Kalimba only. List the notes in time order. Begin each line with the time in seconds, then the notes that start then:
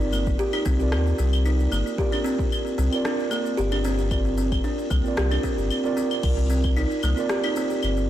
0.12 A#3
0.39 G4
0.53 D#4
0.66 C4
1.18 C4
1.46 D#4
1.72 A#3
1.98 G4
2.12 D4
2.24 C4
2.78 C4
3.05 D4
3.31 A#3
3.57 G4
3.72 D4
3.85 C4
4.38 C4
4.64 D4
4.90 A#3
5.17 G4
5.31 D4
5.43 C4
5.97 C4
6.50 C4
6.76 D#4
7.03 A#3
7.29 G4
7.44 D#4
7.57 C4